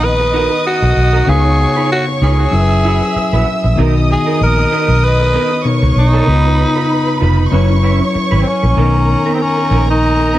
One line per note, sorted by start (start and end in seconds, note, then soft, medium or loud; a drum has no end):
0.00 0.47 A#1 medium
0.00 1.23 D#3 medium
0.00 1.23 B3 medium
0.00 1.24 D#4 soft
0.00 1.24 B4 medium
0.00 1.25 D#5 medium
0.00 1.25 D#6 medium
0.04 0.66 B4 medium
0.20 muted clean electric guitar stroke soft
0.33 0.55 D#4 medium
0.33 0.51 F#4 medium
0.33 0.49 A#4 medium
0.51 muted clean electric guitar stroke soft
0.65 1.31 F#4 medium
0.65 muted clean electric guitar stroke soft
0.82 0.93 B1 medium
0.82 muted clean electric guitar stroke soft
0.96 1.20 B1 medium
1.13 1.26 D#4 medium
1.13 1.28 F#4 medium
1.13 1.28 A#4 medium
1.26 1.64 C#2 loud
1.26 2.49 C#3 medium
1.26 2.50 B3 soft
1.26 1.48 D#4 medium
1.26 2.50 D#4 soft
1.26 1.45 F4 medium
1.26 1.91 G#4 medium
1.26 1.43 B4 medium
1.26 2.50 C#5 medium
1.26 2.51 F5 medium
1.26 2.50 C#6 medium
1.45 muted clean electric guitar stroke soft
1.59 muted clean electric guitar stroke soft
1.76 1.89 D#4 soft
1.76 1.90 F4 soft
1.76 1.90 B4 soft
1.90 2.06 F#4 medium
1.90 muted clean electric guitar stroke soft
2.07 muted clean electric guitar stroke soft
2.21 2.45 C#2 medium
2.21 2.43 D#4 medium
2.21 2.39 F4 medium
2.21 3.43 G#4 medium
2.21 2.38 B4 medium
2.39 muted clean electric guitar stroke soft
2.51 3.00 F#1 medium
2.51 3.74 F#3 medium
2.51 3.75 C#4 soft
2.51 3.75 E4 soft
2.51 2.60 A#4 medium
2.51 3.75 E5 medium
2.51 3.75 E6 medium
2.51 muted clean electric guitar stroke soft
2.61 3.79 B4 medium
2.84 3.01 E4 medium
2.84 3.02 F#4 medium
2.84 3.01 B4 medium
3.02 muted clean electric guitar stroke soft
3.16 muted fingered electric bass stroke soft
3.16 muted clean electric guitar stroke soft
3.33 3.43 A#1 medium
3.33 3.46 E4 soft
3.33 3.47 F#4 medium
3.33 3.47 B4 medium
3.47 muted clean electric guitar stroke soft
3.64 3.75 A#1 medium
3.64 muted clean electric guitar stroke soft
3.76 4.14 B1 medium
3.76 5.60 D#3 medium
3.76 5.61 B3 medium
3.76 3.99 B3 medium
3.76 5.61 D#4 medium
3.76 3.95 D#4 medium
3.76 5.62 F#4 medium
3.76 3.94 A#4 medium
3.76 5.61 D#5 medium
3.76 5.61 D#6 medium
3.95 muted clean electric guitar stroke soft
4.09 4.39 G#4 medium
4.09 muted clean electric guitar stroke soft
4.26 4.39 B3 soft
4.26 4.40 D#4 soft
4.26 4.40 A#4 soft
4.40 4.64 A#1 medium
4.40 5.06 A#4 medium
4.40 muted clean electric guitar stroke soft
4.57 muted clean electric guitar stroke soft
4.71 4.92 B3 medium
4.71 4.88 D#4 medium
4.71 4.87 A#4 medium
4.88 5.35 B1 medium
4.88 muted clean electric guitar stroke soft
5.04 5.66 B4 medium
5.20 muted clean electric guitar stroke soft
5.34 5.55 B3 medium
5.34 5.51 D#4 medium
5.34 5.50 A#4 medium
5.51 muted clean electric guitar stroke soft
5.64 6.27 B2 soft
5.64 6.26 B3 soft
5.64 6.27 D#4 soft
5.64 6.28 A#4 soft
5.64 6.26 C#5 medium
5.64 6.26 C#6 medium
5.64 muted clean electric guitar stroke soft
5.82 5.93 C#2 medium
5.82 muted clean electric guitar stroke soft
5.96 6.20 B1 medium
5.96 7.18 D#4 loud
6.13 6.27 B3 medium
6.13 6.26 D#4 medium
6.13 6.28 A#4 medium
6.26 6.64 C#2 medium
6.26 7.49 C#3 medium
6.26 7.50 B3 medium
6.26 6.48 D#4 medium
6.26 7.50 D#4 soft
6.26 6.45 F4 medium
6.26 7.51 F4 medium
6.26 7.50 B4 medium
6.26 6.44 B4 medium
6.26 7.50 B5 medium
6.45 muted clean electric guitar stroke soft
6.59 muted clean electric guitar stroke soft
6.76 6.89 D#4 soft
6.76 6.89 F4 soft
6.76 6.90 B4 soft
6.90 muted clean electric guitar stroke soft
7.07 muted clean electric guitar stroke soft
7.21 7.45 F1 medium
7.21 7.42 D#4 medium
7.21 7.38 F4 medium
7.21 7.37 B4 medium
7.38 muted clean electric guitar stroke soft
7.51 8.00 F#1 medium
7.51 8.74 F#3 medium
7.51 8.75 C#4 medium
7.51 7.73 C#4 medium
7.51 7.69 E4 medium
7.51 8.75 E4 medium
7.51 8.75 B4 medium
7.51 8.75 C#5 medium
7.51 7.68 C#5 medium
7.51 8.75 C#6 medium
7.69 muted clean electric guitar stroke soft
7.83 8.00 C#4 soft
7.83 8.00 E4 medium
7.83 7.99 B4 medium
8.00 muted clean electric guitar stroke soft
8.14 muted clean electric guitar stroke soft
8.14 muted fingered electric bass stroke soft
8.31 8.43 G#1 medium
8.31 8.45 C#4 medium
8.31 8.45 E4 medium
8.31 8.46 B4 medium
8.41 8.49 C4 medium
8.46 9.34 C#4 medium
8.46 muted clean electric guitar stroke soft
8.63 8.74 A#1 medium
8.63 muted clean electric guitar stroke soft
8.77 9.14 B1 loud
8.77 10.39 D#3 medium
8.77 8.98 B3 medium
8.77 10.39 B3 medium
8.77 8.94 D#4 medium
8.77 10.39 D#4 medium
8.77 10.39 A#4 medium
8.77 8.93 A#4 medium
8.77 10.39 A#4 medium
8.77 10.39 A#5 medium
8.94 muted clean electric guitar stroke soft
9.09 muted clean electric guitar stroke soft
9.26 9.39 B3 soft
9.26 9.39 D#4 soft
9.26 9.40 A#4 soft
9.34 9.43 C4 medium
9.40 9.89 C#4 medium
9.40 muted clean electric guitar stroke soft
9.57 muted clean electric guitar stroke soft
9.71 10.39 A#1 medium
9.71 9.92 B3 medium
9.71 9.88 D#4 medium
9.71 9.87 A#4 medium
9.88 10.39 D#4 medium
9.88 muted clean electric guitar stroke soft
10.19 muted clean electric guitar stroke soft
10.34 10.39 B3 medium
10.34 10.39 D#4 medium
10.34 10.39 A#4 medium